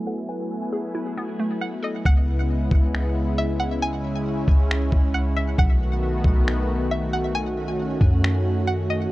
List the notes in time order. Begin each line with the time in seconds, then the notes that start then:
Already playing: F#3 A3 B3 E4 G#4 G#5
0.07 A4 F#5
0.29 B4 G#5
0.73 G#4
0.95 E4
1.18 B3
1.40 A3
1.61 F#5
1.83 A4 D#5
2.05 C#2 C#3 G#3 B3 E4 F#5, kick
2.71 C#2, kick
2.95 finger snap
3.38 E5
3.60 F#5
3.82 C#4 G#5
4.48 C#2, kick
4.71 finger snap
4.92 C#2, kick
5.14 F#5
5.36 E5
5.58 B1 D#3 A3 B3 F#4 F#5, kick
6.24 B1, kick
6.48 finger snap
6.91 E5
7.13 F#5
7.35 C#4 G#5
8.01 F#2, kick
8.24 finger snap
8.67 F#5
8.90 D#5